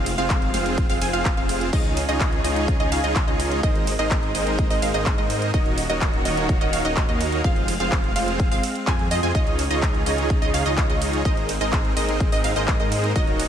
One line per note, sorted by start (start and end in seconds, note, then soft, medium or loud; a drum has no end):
0.00 0.16 F1 loud
0.00 1.71 G#3 medium
0.00 0.12 C4 medium
0.00 1.71 C4 medium
0.00 0.12 F4 medium
0.00 0.12 G#4 medium
0.00 0.12 C5 medium
0.00 0.12 F5 loud
0.00 3.59 F5 medium
0.06 open hi-hat loud
0.06 ride medium
0.18 0.51 F1 medium
0.18 0.51 C4 medium
0.18 0.51 F4 medium
0.18 0.51 G#4 medium
0.18 0.51 C5 medium
0.18 0.51 F5 medium
0.18 closed hi-hat medium
0.30 kick loud
0.30 clap loud
0.30 closed hi-hat medium
0.42 closed hi-hat soft
0.54 0.87 F1 medium
0.54 0.87 C4 medium
0.54 0.87 F4 medium
0.54 0.87 G#4 medium
0.54 0.87 C5 medium
0.54 0.87 F5 medium
0.54 open hi-hat loud
0.54 ride medium
0.66 closed hi-hat medium
0.78 kick loud
0.78 closed hi-hat medium
0.89 0.99 F1 loud
0.89 0.99 C4 medium
0.89 0.99 F4 medium
0.89 0.99 G#4 medium
0.89 0.99 C5 medium
0.89 0.99 F5 loud
0.89 open hi-hat medium
1.01 1.11 F1 medium
1.01 1.10 C4 medium
1.01 1.10 F4 medium
1.01 1.10 G#4 medium
1.01 1.10 C5 medium
1.01 1.10 G#5 medium
1.01 1.11 G#5 medium
1.01 open hi-hat loud
1.01 ride medium
1.13 1.35 F1 loud
1.13 1.34 C4 medium
1.13 1.34 F4 medium
1.13 1.34 G#4 medium
1.13 1.34 C5 medium
1.13 1.34 F5 medium
1.13 closed hi-hat medium
1.25 kick loud
1.25 clap loud
1.25 closed hi-hat medium
1.37 1.70 F1 loud
1.37 1.70 C4 medium
1.37 1.70 F4 medium
1.37 1.70 G#4 medium
1.37 1.70 C5 medium
1.37 1.70 F5 medium
1.37 closed hi-hat soft
1.49 open hi-hat loud
1.49 ride medium
1.61 closed hi-hat medium
1.73 2.06 C#2 loud
1.73 3.62 C#3 medium
1.73 3.62 C#4 medium
1.73 2.02 D#4 medium
1.73 3.62 D#4 medium
1.73 2.02 F4 medium
1.73 2.02 G#4 medium
1.73 3.62 G#4 medium
1.73 2.02 C#5 medium
1.73 2.02 D#5 loud
1.73 kick loud
1.73 closed hi-hat medium
1.73 crash medium
1.85 closed hi-hat soft
1.97 open hi-hat loud
1.97 ride medium
2.09 2.42 C#2 loud
2.09 2.41 D#4 medium
2.09 2.41 F4 medium
2.09 2.41 G#4 medium
2.09 2.41 C#5 medium
2.09 2.41 D#5 loud
2.09 closed hi-hat medium
2.21 kick loud
2.21 clap loud
2.21 closed hi-hat medium
2.33 closed hi-hat soft
2.44 2.78 C#2 loud
2.44 2.77 D#4 medium
2.44 2.77 F4 medium
2.44 2.77 G#4 medium
2.44 2.77 C#5 medium
2.44 2.77 D#5 medium
2.44 open hi-hat loud
2.44 ride medium
2.56 closed hi-hat medium
2.68 kick loud
2.68 closed hi-hat medium
2.80 2.90 C#2 medium
2.80 2.90 D#4 medium
2.80 2.90 F4 medium
2.80 2.90 G#4 medium
2.80 2.90 C#5 medium
2.80 2.89 D#5 loud
2.80 2.90 D#5 loud
2.80 closed hi-hat soft
2.92 3.01 C#2 medium
2.92 3.01 D#4 medium
2.92 3.01 F4 medium
2.92 3.01 G#4 medium
2.92 3.01 C#5 medium
2.92 3.01 F5 medium
2.92 open hi-hat loud
2.92 ride medium
3.04 3.25 C#2 loud
3.04 3.25 D#4 medium
3.04 3.25 F4 medium
3.04 3.25 G#4 medium
3.04 3.25 C#5 medium
3.04 3.25 D#5 loud
3.04 3.25 D#5 medium
3.04 closed hi-hat medium
3.16 kick loud
3.16 clap loud
3.16 closed hi-hat medium
3.27 3.61 C#2 loud
3.27 3.61 D#4 medium
3.27 3.61 F4 medium
3.27 3.61 G#4 medium
3.27 3.61 C#5 medium
3.27 3.60 D#5 medium
3.27 3.61 D#5 medium
3.27 closed hi-hat soft
3.40 open hi-hat loud
3.40 ride medium
3.52 closed hi-hat medium
3.63 3.97 G#1 loud
3.63 5.52 G#3 medium
3.63 5.52 A#3 medium
3.63 5.52 C4 loud
3.63 3.93 D#4 loud
3.63 3.93 G#4 medium
3.63 3.93 A#4 medium
3.63 3.93 C5 medium
3.63 3.93 D#5 loud
3.63 kick loud
3.63 closed hi-hat medium
3.75 closed hi-hat soft
3.87 open hi-hat loud
3.87 ride medium
3.99 4.32 G#1 loud
3.99 4.32 D#4 medium
3.99 4.32 G#4 medium
3.99 4.32 A#4 medium
3.99 4.32 C5 medium
3.99 4.32 D#5 medium
3.99 4.32 D#5 loud
3.99 closed hi-hat medium
4.11 kick loud
4.11 clap loud
4.11 closed hi-hat medium
4.23 closed hi-hat soft
4.35 4.68 G#1 medium
4.35 4.68 D#4 medium
4.35 4.68 G#4 medium
4.35 4.68 A#4 medium
4.35 4.68 C5 medium
4.35 4.68 D#5 medium
4.35 open hi-hat loud
4.35 ride medium
4.47 closed hi-hat medium
4.59 kick loud
4.59 closed hi-hat medium
4.70 4.80 G#1 loud
4.70 4.80 D#4 medium
4.70 4.80 G#4 medium
4.70 4.80 A#4 medium
4.70 4.80 C5 medium
4.70 4.80 D#5 loud
4.70 open hi-hat medium
4.82 4.92 G#1 medium
4.82 4.91 D#4 medium
4.82 4.92 G#4 medium
4.82 4.91 A#4 medium
4.82 4.91 C5 medium
4.82 4.91 F5 medium
4.82 open hi-hat loud
4.82 ride medium
4.94 5.16 G#1 loud
4.94 5.15 D#4 medium
4.94 5.15 G#4 medium
4.94 5.15 A#4 medium
4.94 5.15 C5 medium
4.94 5.15 D#5 loud
4.94 5.15 D#5 medium
4.94 closed hi-hat medium
5.06 kick loud
5.06 clap loud
5.06 closed hi-hat medium
5.18 5.51 G#2 loud
5.18 5.51 D#4 medium
5.18 5.51 G#4 medium
5.18 5.51 A#4 medium
5.18 5.51 C5 medium
5.18 5.51 D#5 medium
5.18 closed hi-hat soft
5.30 open hi-hat loud
5.30 ride medium
5.42 closed hi-hat medium
5.54 5.87 D#1 loud
5.54 7.43 D#3 medium
5.54 7.43 A#3 medium
5.54 7.43 C#4 medium
5.54 5.83 D#4 loud
5.54 5.83 F#4 medium
5.54 7.43 F#4 loud
5.54 5.83 A#4 medium
5.54 5.83 C#5 medium
5.54 5.83 D#5 loud
5.54 11.21 F5 medium
5.54 kick loud
5.54 closed hi-hat medium
5.66 closed hi-hat soft
5.78 open hi-hat loud
5.78 ride medium
5.89 6.23 D#1 medium
5.89 6.22 D#4 medium
5.89 6.22 F#4 medium
5.89 6.22 A#4 medium
5.89 6.22 C#5 medium
5.89 6.22 D#5 loud
5.89 6.22 D#5 medium
5.89 closed hi-hat medium
6.01 kick loud
6.01 clap loud
6.01 closed hi-hat soft
6.14 closed hi-hat soft
6.25 6.59 D#1 loud
6.25 6.58 D#4 medium
6.25 6.58 F#4 medium
6.25 6.58 A#4 medium
6.25 6.58 C#5 medium
6.25 6.58 D#5 medium
6.25 open hi-hat loud
6.25 ride medium
6.37 closed hi-hat medium
6.49 kick loud
6.49 closed hi-hat medium
6.61 6.70 D#1 loud
6.61 6.71 D#4 medium
6.61 6.70 F#4 medium
6.61 6.70 A#4 medium
6.61 6.70 C#5 medium
6.61 6.70 D#5 loud
6.61 6.71 D#5 loud
6.61 closed hi-hat soft
6.73 6.82 D#1 loud
6.73 6.82 D#4 medium
6.73 6.82 F#4 medium
6.73 6.82 A#4 medium
6.73 6.82 C#5 medium
6.73 6.82 F5 medium
6.73 open hi-hat loud
6.73 ride medium
6.85 7.06 D#1 loud
6.85 7.06 D#4 medium
6.85 7.06 F#4 medium
6.85 7.06 A#4 medium
6.85 7.06 C#5 medium
6.85 7.06 D#5 medium
6.85 7.06 D#5 loud
6.85 closed hi-hat soft
6.97 kick loud
6.97 clap loud
6.97 closed hi-hat medium
7.09 7.42 D#2 loud
7.09 7.41 D#4 medium
7.09 7.41 F#4 medium
7.09 7.41 A#4 medium
7.09 7.41 C#5 medium
7.09 7.41 D#5 medium
7.09 closed hi-hat soft
7.21 open hi-hat loud
7.21 ride medium
7.32 closed hi-hat medium
7.44 7.78 F1 loud
7.44 9.33 G#3 medium
7.44 7.74 C4 loud
7.44 9.33 C4 medium
7.44 7.74 F4 medium
7.44 7.74 G#4 medium
7.44 7.74 C5 medium
7.44 7.74 F5 loud
7.44 kick loud
7.44 closed hi-hat soft
7.56 closed hi-hat soft
7.68 open hi-hat loud
7.68 ride medium
7.80 8.13 F1 loud
7.80 8.13 C4 medium
7.80 8.13 F4 medium
7.80 8.13 G#4 medium
7.80 8.13 C5 medium
7.80 8.13 F5 medium
7.80 closed hi-hat medium
7.92 kick loud
7.92 clap loud
7.92 closed hi-hat medium
8.04 closed hi-hat soft
8.16 8.49 F1 loud
8.16 8.49 C4 medium
8.16 8.49 F4 medium
8.16 8.49 G#4 medium
8.16 8.49 C5 medium
8.16 8.49 F5 medium
8.16 open hi-hat loud
8.16 ride medium
8.28 closed hi-hat medium
8.40 kick loud
8.40 closed hi-hat medium
8.51 8.59 F1 medium
8.51 8.61 C4 medium
8.51 8.61 F4 medium
8.51 8.61 G#4 medium
8.51 8.61 C5 medium
8.51 8.61 F5 loud
8.51 open hi-hat medium
8.63 open hi-hat loud
8.63 ride medium
8.75 closed hi-hat soft
8.87 9.09 F2 loud
8.87 9.08 C4 medium
8.87 9.08 F4 medium
8.87 9.08 G#4 medium
8.87 9.08 C5 medium
8.87 9.08 G#5 loud
8.87 kick loud
8.87 clap loud
8.87 closed hi-hat medium
8.99 closed hi-hat soft
9.11 9.20 F2 medium
9.11 9.20 C4 medium
9.11 9.20 F4 medium
9.11 9.20 G#4 medium
9.11 9.20 C5 medium
9.11 9.20 D#5 loud
9.11 open hi-hat loud
9.11 ride medium
9.23 9.32 F2 medium
9.23 9.32 C4 medium
9.23 9.32 F4 medium
9.23 9.32 G#4 medium
9.23 9.32 C5 medium
9.23 9.32 G#5 loud
9.23 9.32 G#5 medium
9.23 closed hi-hat medium
9.35 9.68 C#2 loud
9.35 11.23 C#3 medium
9.35 11.23 C#4 medium
9.35 9.64 D#4 loud
9.35 11.23 D#4 medium
9.35 9.64 F4 medium
9.35 9.64 G#4 medium
9.35 11.23 G#4 loud
9.35 9.64 C#5 medium
9.35 9.64 D#5 loud
9.35 kick loud
9.35 closed hi-hat medium
9.47 closed hi-hat soft
9.59 open hi-hat loud
9.59 ride medium
9.70 10.04 C#2 medium
9.70 10.03 D#4 medium
9.70 10.03 F4 medium
9.70 10.03 G#4 medium
9.70 10.03 C#5 medium
9.70 10.03 D#5 loud
9.70 10.03 D#5 medium
9.70 closed hi-hat medium
9.82 kick loud
9.82 clap loud
9.82 closed hi-hat soft
9.95 closed hi-hat soft
10.06 10.40 C#2 loud
10.06 10.39 D#4 medium
10.06 10.39 F4 medium
10.06 10.39 G#4 medium
10.06 10.39 C#5 medium
10.06 10.39 D#5 medium
10.06 open hi-hat loud
10.06 ride medium
10.18 closed hi-hat medium
10.30 kick loud
10.30 closed hi-hat medium
10.42 10.51 C#2 medium
10.42 10.51 D#4 loud
10.42 10.51 F4 medium
10.42 10.51 G#4 medium
10.42 10.51 C#5 medium
10.42 10.51 D#5 loud
10.42 closed hi-hat soft
10.54 10.63 C#2 loud
10.54 10.63 D#4 medium
10.54 10.63 F4 medium
10.54 10.63 G#4 medium
10.54 10.63 C#5 medium
10.54 10.63 F5 medium
10.54 open hi-hat loud
10.54 ride medium
10.66 10.87 C#2 loud
10.66 10.87 D#4 medium
10.66 10.87 F4 medium
10.66 10.87 G#4 medium
10.66 10.87 C#5 medium
10.66 10.87 D#5 medium
10.66 10.87 D#5 loud
10.66 closed hi-hat soft
10.78 kick loud
10.78 clap loud
10.78 closed hi-hat soft
10.89 11.23 C#2 loud
10.89 11.22 D#4 medium
10.89 11.22 F4 medium
10.89 11.22 G#4 medium
10.89 11.22 C#5 medium
10.89 11.22 D#5 medium
10.89 closed hi-hat soft
11.02 open hi-hat loud
11.02 ride medium
11.13 closed hi-hat medium
11.25 11.59 G#1 loud
11.25 13.14 G#3 medium
11.25 13.48 A#3 medium
11.25 13.14 C4 medium
11.25 11.55 D#4 medium
11.25 11.55 G#4 medium
11.25 11.55 A#4 medium
11.25 11.55 C5 medium
11.25 11.55 D#5 loud
11.25 kick loud
11.25 closed hi-hat medium
11.37 closed hi-hat soft
11.49 open hi-hat loud
11.49 ride medium
11.61 11.94 G#1 loud
11.61 11.94 D#4 medium
11.61 11.94 G#4 medium
11.61 11.94 A#4 medium
11.61 11.94 C5 medium
11.61 11.94 D#5 medium
11.61 closed hi-hat medium
11.73 kick loud
11.73 clap loud
11.73 closed hi-hat medium
11.85 closed hi-hat soft
11.97 12.30 G#1 loud
11.97 12.30 D#4 medium
11.97 12.30 G#4 medium
11.97 12.30 A#4 medium
11.97 12.30 C5 medium
11.97 12.30 D#5 medium
11.97 open hi-hat loud
11.97 ride medium
12.09 closed hi-hat medium
12.20 kick loud
12.20 closed hi-hat medium
12.32 12.42 G#1 loud
12.32 12.42 D#4 medium
12.32 12.42 G#4 medium
12.32 12.42 A#4 medium
12.32 12.42 C5 medium
12.32 12.42 D#5 loud
12.32 open hi-hat medium
12.44 12.54 G#1 loud
12.44 12.53 D#4 medium
12.44 12.53 G#4 medium
12.44 12.53 A#4 medium
12.44 12.53 C5 medium
12.44 12.53 F5 medium
12.44 open hi-hat loud
12.44 ride medium
12.56 12.78 G#1 loud
12.56 12.77 D#4 medium
12.56 12.77 G#4 medium
12.56 12.77 A#4 medium
12.56 12.77 C5 medium
12.56 12.77 D#5 medium
12.56 12.77 D#5 loud
12.56 closed hi-hat soft
12.68 kick loud
12.68 clap loud
12.68 closed hi-hat medium
12.80 13.13 G#2 loud
12.80 13.13 D#4 medium
12.80 13.13 G#4 medium
12.80 13.13 A#4 medium
12.80 13.13 C5 medium
12.80 13.13 D#5 medium
12.80 closed hi-hat soft
12.92 open hi-hat loud
12.92 ride medium
13.04 closed hi-hat medium
13.16 13.48 D#1 loud
13.16 13.48 D#3 medium
13.16 13.48 C#4 medium
13.16 13.45 D#4 loud
13.16 13.45 F#4 medium
13.16 13.48 F#4 loud
13.16 13.45 A#4 medium
13.16 13.45 C#5 medium
13.16 13.45 D#5 loud
13.16 13.48 F5 medium
13.16 kick loud
13.16 closed hi-hat medium
13.27 closed hi-hat soft
13.40 open hi-hat loud
13.40 ride medium